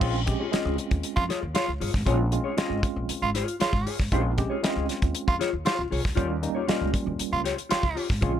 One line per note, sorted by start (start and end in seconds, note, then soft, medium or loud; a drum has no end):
0.00 0.30 A#1 loud
0.00 0.19 G#3 medium
0.00 0.19 C4 medium
0.00 0.19 C#4 medium
0.00 0.15 F4 medium
0.00 0.20 F4 loud
0.00 0.14 G#4 medium
0.00 0.13 C#5 medium
0.00 kick loud
0.00 crash medium
0.14 muted clean electric guitar stroke medium
0.26 0.45 G#3 medium
0.26 0.45 C4 medium
0.26 0.45 C#4 medium
0.26 0.45 G4 medium
0.26 muted clean electric guitar stroke soft
0.26 kick medium
0.26 closed hi-hat medium
0.40 0.51 F4 medium
0.40 0.51 G#4 medium
0.40 0.50 C#5 medium
0.52 1.25 G#3 medium
0.52 1.26 C4 medium
0.52 1.26 C#4 medium
0.52 0.76 F4 medium
0.52 1.26 F4 medium
0.52 0.76 G#4 medium
0.52 0.77 D#5 medium
0.52 muted upright bass stroke soft
0.52 snare loud
0.52 closed hi-hat loud
0.65 0.75 C#2 loud
0.78 muted clean electric guitar stroke soft
0.78 closed hi-hat medium
0.90 1.01 D#2 medium
0.90 muted clean electric guitar stroke soft
0.90 kick medium
0.90 closed hi-hat medium
1.03 closed hi-hat loud
1.16 1.26 F2 medium
1.16 1.24 F4 loud
1.16 muted clean electric guitar stroke soft
1.16 kick medium
1.29 1.43 F4 medium
1.29 1.42 G#4 loud
1.29 1.41 C#5 loud
1.29 snare soft
1.29 closed hi-hat medium
1.42 1.52 D#2 medium
1.42 muted clean electric guitar stroke soft
1.54 1.68 F4 medium
1.54 1.72 F4 loud
1.54 1.68 G#4 medium
1.54 1.67 C#5 loud
1.54 snare loud
1.54 closed hi-hat loud
1.68 1.78 C#2 medium
1.68 muted clean electric guitar stroke soft
1.80 1.91 G1 medium
1.80 1.91 F4 medium
1.80 1.91 G#4 medium
1.80 1.92 C#5 medium
1.80 open hi-hat medium
1.93 2.04 G#1 medium
1.93 muted clean electric guitar stroke medium
1.93 kick medium
1.93 snare soft
2.06 2.35 A#1 loud
2.06 2.25 G#3 medium
2.06 2.25 C4 medium
2.06 2.25 C#4 medium
2.06 2.19 F4 medium
2.06 2.25 F4 loud
2.06 2.19 G#4 medium
2.06 2.18 C#5 medium
2.06 kick loud
2.06 closed hi-hat medium
2.19 muted clean electric guitar stroke soft
2.32 2.50 G#3 medium
2.32 2.51 C4 medium
2.32 2.51 C#4 medium
2.32 2.51 F4 medium
2.32 muted clean electric guitar stroke soft
2.32 closed hi-hat medium
2.44 2.56 F4 medium
2.44 2.55 G#4 medium
2.44 2.55 C#5 medium
2.57 3.31 G#3 medium
2.57 3.31 C4 medium
2.57 3.31 C#4 medium
2.57 2.81 F4 loud
2.57 3.31 F4 loud
2.57 2.81 G#4 medium
2.57 2.82 D#5 medium
2.57 muted upright bass stroke soft
2.57 snare loud
2.57 closed hi-hat medium
2.70 2.80 G#1 medium
2.83 muted clean electric guitar stroke soft
2.83 kick loud
2.83 closed hi-hat medium
2.96 3.06 A#1 medium
2.96 muted clean electric guitar stroke medium
3.09 muted upright bass stroke soft
3.09 closed hi-hat loud
3.22 3.41 G#1 medium
3.22 3.31 F4 loud
3.22 muted clean electric guitar stroke medium
3.34 3.55 F4 medium
3.34 3.48 G#4 medium
3.34 3.47 C#5 medium
3.34 snare soft
3.34 closed hi-hat medium
3.48 muted clean electric guitar stroke soft
3.48 closed hi-hat soft
3.60 3.73 F4 medium
3.60 3.94 F4 loud
3.60 3.73 G#4 medium
3.60 3.72 C#5 medium
3.60 muted upright bass stroke soft
3.60 snare loud
3.60 closed hi-hat loud
3.73 3.83 G#1 medium
3.73 muted clean electric guitar stroke medium
3.73 kick medium
3.86 3.97 F4 medium
3.86 3.97 G#4 medium
3.86 3.97 C#5 medium
3.86 open hi-hat medium
4.00 4.09 G#1 medium
4.00 muted clean electric guitar stroke medium
4.00 kick medium
4.00 snare soft
4.12 4.41 A#1 loud
4.12 4.30 G#3 medium
4.12 4.30 C4 medium
4.12 4.30 C#4 medium
4.12 4.32 F4 medium
4.12 4.31 F4 loud
4.12 4.25 G#4 medium
4.12 4.23 C#5 loud
4.12 kick loud
4.12 closed hi-hat medium
4.25 muted clean electric guitar stroke soft
4.37 4.56 G#3 medium
4.37 4.56 C4 medium
4.37 4.56 C#4 medium
4.37 4.56 G4 medium
4.37 muted clean electric guitar stroke soft
4.37 kick medium
4.37 closed hi-hat medium
4.50 4.61 F4 medium
4.50 4.61 G#4 medium
4.50 4.60 C#5 medium
4.63 5.36 G#3 medium
4.63 5.36 C4 medium
4.63 5.37 C#4 medium
4.63 4.70 E4 medium
4.63 4.87 F4 medium
4.63 4.87 G#4 medium
4.63 4.88 D#5 medium
4.63 muted upright bass stroke soft
4.63 snare loud
4.63 closed hi-hat medium
4.70 5.40 F4 loud
4.76 4.86 C#2 medium
4.88 muted clean electric guitar stroke soft
4.88 snare soft
4.88 closed hi-hat medium
5.02 5.12 D#2 medium
5.02 muted clean electric guitar stroke medium
5.02 kick medium
5.02 closed hi-hat medium
5.15 closed hi-hat loud
5.27 5.37 F2 loud
5.27 5.36 F4 medium
5.27 muted clean electric guitar stroke soft
5.27 kick loud
5.39 5.53 F4 medium
5.39 5.52 G#4 loud
5.39 5.51 C#5 loud
5.39 snare soft
5.39 closed hi-hat medium
5.52 5.63 D#2 medium
5.52 muted clean electric guitar stroke medium
5.65 5.85 F4 medium
5.65 5.82 F4 loud
5.65 5.78 G#4 medium
5.65 5.77 C#5 medium
5.65 snare loud
5.65 closed hi-hat medium
5.78 5.88 C#2 medium
5.78 muted clean electric guitar stroke soft
5.91 6.01 C2 medium
5.91 6.01 F4 medium
5.91 6.02 G#4 medium
5.91 6.02 C#5 medium
5.91 open hi-hat medium
6.03 6.14 C#2 medium
6.03 muted clean electric guitar stroke soft
6.03 kick medium
6.03 snare soft
6.15 6.46 D#2 loud
6.15 6.35 G3 medium
6.15 6.35 A#3 medium
6.15 6.35 C#4 medium
6.15 6.30 F4 loud
6.15 6.36 F4 loud
6.15 6.28 G4 medium
6.15 6.28 C#5 medium
6.15 kick loud
6.15 closed hi-hat medium
6.29 muted clean electric guitar stroke soft
6.42 6.61 G3 medium
6.42 6.61 A#3 medium
6.42 6.61 C#4 medium
6.42 6.61 D#4 medium
6.42 muted clean electric guitar stroke soft
6.42 closed hi-hat medium
6.55 6.66 F4 medium
6.55 6.66 G4 medium
6.55 6.66 C#5 medium
6.67 7.41 G3 medium
6.67 7.42 A#3 medium
6.67 7.42 C#4 medium
6.67 6.91 F4 medium
6.67 7.42 F4 medium
6.67 6.92 G4 medium
6.67 6.92 D#5 medium
6.67 muted upright bass stroke soft
6.67 snare loud
6.67 closed hi-hat medium
6.81 6.91 C#2 loud
6.93 muted clean electric guitar stroke soft
6.93 kick loud
6.93 closed hi-hat medium
7.06 7.16 D#2 medium
7.06 muted clean electric guitar stroke soft
7.19 muted upright bass stroke soft
7.19 closed hi-hat loud
7.32 7.52 C#2 loud
7.32 7.41 F4 loud
7.32 muted clean electric guitar stroke soft
7.44 7.58 F4 medium
7.44 7.57 G4 medium
7.44 7.56 C#5 loud
7.44 snare soft
7.44 closed hi-hat medium
7.57 muted clean electric guitar stroke soft
7.57 closed hi-hat medium
7.69 7.84 F4 medium
7.69 8.04 F4 loud
7.69 7.83 G4 medium
7.69 7.82 C#5 medium
7.69 muted upright bass stroke soft
7.69 snare loud
7.69 closed hi-hat loud
7.83 7.93 C#2 medium
7.83 muted clean electric guitar stroke soft
7.83 kick loud
7.95 8.06 F4 medium
7.95 8.07 G4 medium
7.95 8.07 C#5 medium
7.95 open hi-hat medium
8.10 8.19 G#1 medium
8.10 kick medium
8.10 snare soft
8.21 8.40 A#1 medium
8.21 8.40 G#3 medium
8.21 8.40 C4 medium
8.21 8.40 C#4 medium
8.21 8.35 F4 medium
8.21 8.40 F4 loud
8.21 8.34 G#4 medium
8.21 8.33 C#5 medium
8.21 kick loud
8.21 closed hi-hat loud
8.21 low conga medium
8.34 muted clean electric guitar stroke soft
8.34 muted conga soft